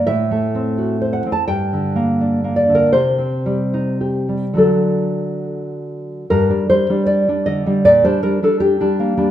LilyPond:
\new Staff \with { instrumentName = "Nylon-string guitar" } { \time 2/4 \key g \minor \tempo 4 = 79 << { e''4. fis''16 a''16 | g''4. d''16 bes'16 | c''2 | a'4 r4 |
bes'8 c''8 d''8 ees''8 | d''16 c''16 bes'16 a'16 g'4 | } \\ { \tuplet 3/2 { a,8 a8 c'8 fis'8 c''8 c'8 } | \tuplet 3/2 { g,8 d8 bes8 d'8 bes8 d8 } | \tuplet 3/2 { c8 c'8 g8 ees'8 g'8 g8 } | <d fis d'>2 |
g,16 <g d'>16 g16 <g d'>8 <g d'>16 d16 <g d'>16 | bes,16 <g d'>16 g16 <g d'>8 <g d'>16 bes16 <g d'>16 | } >> }